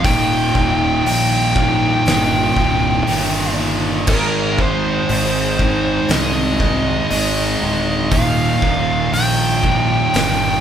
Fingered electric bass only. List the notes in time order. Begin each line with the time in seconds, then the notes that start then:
0.04 D#1
0.55 D#1
1.05 A#1
2.06 G1
2.56 C1
3.07 G1
4.08 G#1
5.09 G#1
6.09 C2
7.11 G#1
7.60 D1
8.11 D#1
8.62 D#1
9.12 A#1
10.15 G1